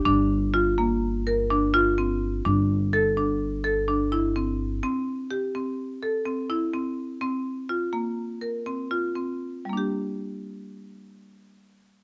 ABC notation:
X:1
M:5/4
L:1/8
Q:1/4=125
K:Gdor
V:1 name="Marimba"
D2 F B,2 B D F C2 | D2 A D2 A D E C2 | C2 G C2 A C E C2 | C2 F B,2 B C F C2 |
[G,B,DG]8- [G,B,DG]2 |]
V:2 name="Upright bass" clef=bass
G,,,8- G,,,2 | G,,,8- G,,,2 | z8 z2 | z8 z2 |
z8 z2 |]